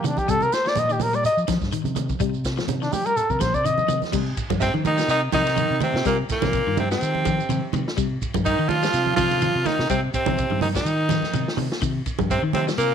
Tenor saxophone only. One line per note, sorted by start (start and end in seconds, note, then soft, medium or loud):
4.62 4.73 C4 medium
4.87 5.08 D#4 loud
5.10 5.21 D#4 loud
5.34 5.78 D#4 loud
5.83 6.05 C4 medium
6.06 6.17 A#3 medium
6.32 6.75 A#3 loud
6.80 6.91 C4 medium
6.91 7.70 C4 medium
8.45 8.70 D#4 loud
8.68 9.16 F4 loud
9.16 9.68 F4 loud
9.66 9.89 D#4 loud
9.90 10.01 C4 medium
10.15 10.59 C4 medium
10.62 10.68 D#4 medium
10.76 11.54 D#4 medium
12.31 12.42 C4 medium
12.54 12.65 C4 medium
12.78 12.94 A#3 loud